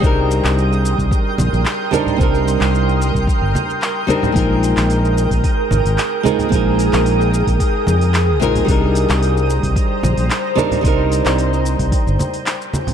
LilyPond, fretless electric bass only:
\new Staff \with { instrumentName = "Fretless electric bass" } { \clef bass \time 4/4 \key c \minor \tempo 4 = 111 c,8. c,4 c,16 r8 bes,,16 bes,,16 r4 | c,8. c,4 c,16 r16 g,,16 r4. | bes,,8. bes,,4 bes,,16 r8 aes,,16 aes,,16 r4 | bes,,8. bes,,4 bes,,16 r8 f,4 bes,,8 |
c,8. c,4 c,16 r8 bes,,16 bes,,16 r4 | c,8. c,4 c,16 r16 g,,16 r4. | }